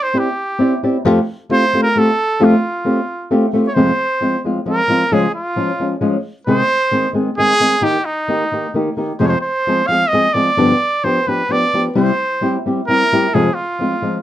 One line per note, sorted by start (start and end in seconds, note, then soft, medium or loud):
0.03 0.21 C5 medium
0.14 0.27 C4 soft
0.14 0.28 E4 medium
0.14 0.28 G4 medium
0.14 0.28 D5 medium
0.19 0.84 G4 medium
0.59 0.73 C4 medium
0.59 0.73 E4 medium
0.59 0.73 G4 medium
0.59 0.74 D5 medium
0.83 0.96 C4 medium
0.83 0.96 E4 medium
0.83 0.96 G4 medium
0.83 0.97 D5 medium
1.05 1.18 F2 medium
1.05 1.18 F3 medium
1.05 1.18 A3 medium
1.05 1.18 C4 medium
1.05 1.19 F4 loud
1.05 1.19 G4 loud
1.49 1.63 A3 medium
1.49 1.63 C4 medium
1.49 1.64 F4 medium
1.49 1.64 G4 medium
1.49 1.79 C5 loud
1.73 1.86 A3 soft
1.73 1.86 C4 medium
1.73 1.87 F4 medium
1.73 1.87 G4 medium
1.83 2.00 A#4 loud
1.96 2.09 A3 medium
1.96 2.09 C4 medium
1.96 2.10 F4 medium
1.96 2.09 G4 medium
1.96 2.46 A4 medium
2.40 2.53 F2 medium
2.40 2.53 F3 medium
2.40 2.54 A3 medium
2.40 2.54 C4 medium
2.40 2.54 F4 medium
2.40 2.54 G4 medium
2.44 3.33 F4 medium
2.85 2.99 A3 soft
2.85 2.99 C4 medium
2.85 3.00 F4 medium
2.85 2.99 G4 medium
3.31 3.44 A3 medium
3.31 3.45 C4 medium
3.31 3.45 F4 medium
3.31 3.45 G4 medium
3.53 3.67 A3 medium
3.53 3.67 C4 medium
3.53 3.68 F4 medium
3.53 3.68 G4 medium
3.68 3.76 C#5 medium
3.74 3.90 F2 medium
3.74 3.90 C3 medium
3.74 3.90 F3 medium
3.74 3.90 G#3 medium
3.74 3.90 C4 medium
3.74 3.90 F4 medium
3.74 4.44 C5 loud
4.21 4.35 F3 medium
4.21 4.35 G#3 medium
4.21 4.35 C4 medium
4.21 4.36 F4 medium
4.44 4.58 F3 soft
4.44 4.58 G#3 soft
4.44 4.59 C4 soft
4.44 4.59 F4 soft
4.66 4.80 F3 medium
4.66 4.81 G#3 medium
4.66 4.81 C4 soft
4.66 4.81 F4 medium
4.66 5.15 A#4 loud
4.88 5.03 F3 medium
4.88 5.03 G#3 medium
4.88 5.03 C4 medium
4.88 5.03 F4 medium
5.11 5.26 C#3 medium
5.11 5.26 F3 medium
5.11 5.26 G#3 medium
5.11 5.26 C#4 medium
5.11 5.26 F4 medium
5.11 5.34 G#4 medium
5.35 5.99 F4 medium
5.56 5.71 F3 medium
5.56 5.71 G#3 soft
5.56 5.71 C#4 medium
5.56 5.71 F4 medium
5.80 5.94 F3 soft
5.80 5.94 G#3 soft
5.80 5.94 C#4 soft
5.80 5.94 F4 soft
6.01 6.16 F3 medium
6.01 6.16 G#3 medium
6.01 6.16 C#4 medium
6.01 6.16 F4 medium
6.47 6.61 C3 medium
6.47 6.61 D#3 medium
6.47 6.62 G#3 medium
6.47 6.62 C4 medium
6.47 6.62 G#4 medium
6.47 7.12 C5 loud
6.91 7.06 D#3 medium
6.91 7.06 G#3 medium
6.91 7.06 C4 medium
6.91 7.07 G#4 medium
7.13 7.28 D#3 soft
7.13 7.29 G#3 medium
7.13 7.29 C4 medium
7.13 7.29 G#4 medium
7.38 7.52 D#3 medium
7.38 7.52 G#3 medium
7.38 7.52 C4 medium
7.38 7.85 G#4 loud
7.38 7.53 G#4 medium
7.60 7.74 D#3 medium
7.60 7.74 G#3 medium
7.60 7.75 C4 medium
7.60 7.75 G#4 medium
7.81 7.96 D#3 medium
7.81 7.97 A#3 medium
7.81 7.97 D#4 medium
7.81 7.97 G4 medium
7.81 8.07 G4 loud
8.05 8.75 D#4 medium
8.28 8.43 D#3 medium
8.28 8.43 A#3 soft
8.28 8.43 D#4 medium
8.28 8.43 G4 medium
8.52 8.66 D#3 soft
8.52 8.66 A#3 soft
8.52 8.66 D#4 soft
8.52 8.67 G4 soft
8.74 8.88 D#3 medium
8.74 8.89 A#3 medium
8.74 8.89 D#4 medium
8.74 8.89 G4 medium
8.97 9.11 D#3 medium
8.97 9.11 A#3 medium
8.97 9.12 D#4 medium
8.97 9.12 G4 medium
9.20 9.34 F2 medium
9.20 9.34 C3 medium
9.20 9.34 F3 medium
9.20 9.34 G#3 medium
9.20 9.34 C4 medium
9.20 9.35 G#4 medium
9.20 9.25 C5 medium
9.20 9.30 C#5 medium
9.29 9.41 C5 medium
9.41 9.89 C5 medium
9.67 9.81 F3 medium
9.67 9.81 G#3 soft
9.67 9.81 C4 medium
9.67 9.82 G#4 medium
9.87 10.03 F3 soft
9.87 10.04 G#3 soft
9.87 10.04 C4 soft
9.87 10.04 G#4 medium
9.87 10.10 F5 loud
10.09 10.26 F3 soft
10.09 10.35 D#5 medium
10.13 10.27 G#3 medium
10.13 10.27 C4 medium
10.13 10.27 G#4 medium
10.33 10.49 F3 medium
10.33 10.49 G#3 medium
10.33 10.49 C4 medium
10.33 10.50 G#4 medium
10.33 11.06 D5 medium
10.57 10.72 G2 medium
10.57 10.72 D3 medium
10.57 10.72 F3 medium
10.57 10.72 B3 medium
10.57 10.72 D4 medium
10.57 10.72 G4 loud
11.04 11.18 F3 soft
11.04 11.18 B3 medium
11.04 11.18 D4 soft
11.04 11.19 G4 medium
11.04 11.30 C5 medium
11.27 11.41 F3 soft
11.27 11.41 B3 soft
11.27 11.41 D4 medium
11.27 11.42 G4 soft
11.27 11.53 B4 medium
11.49 11.63 F3 soft
11.49 11.64 B3 medium
11.49 11.64 D4 medium
11.49 11.64 G4 medium
11.49 11.86 D5 medium
11.74 11.87 F3 soft
11.74 11.88 B3 soft
11.74 11.88 D4 medium
11.74 11.88 G4 medium
11.95 12.10 C3 medium
11.95 12.10 G3 medium
11.95 12.10 C4 medium
11.95 12.10 E4 medium
11.95 12.10 G4 medium
11.95 12.61 C5 medium
12.41 12.56 G3 medium
12.41 12.56 C4 medium
12.41 12.56 E4 medium
12.41 12.56 G4 medium
12.66 12.79 G3 soft
12.66 12.80 C4 medium
12.66 12.80 E4 soft
12.66 12.80 G4 medium
12.87 13.02 G3 medium
12.87 13.02 C4 medium
12.87 13.03 E4 medium
12.87 13.03 G4 medium
12.87 13.36 A#4 loud
13.12 13.26 G3 medium
13.12 13.26 C4 medium
13.12 13.26 E4 medium
13.12 13.26 G4 medium
13.34 13.48 F2 medium
13.34 13.48 C3 medium
13.34 13.49 F3 medium
13.34 13.48 G#3 medium
13.34 13.49 C4 medium
13.34 13.48 F4 medium
13.34 13.56 G#4 medium
13.55 14.22 F4 medium
13.79 13.94 F3 medium
13.79 13.94 G#3 soft
13.79 13.94 C4 medium
13.79 13.95 F4 medium
14.02 14.17 F3 soft
14.02 14.17 G#3 medium
14.02 14.17 C4 medium
14.02 14.17 F4 soft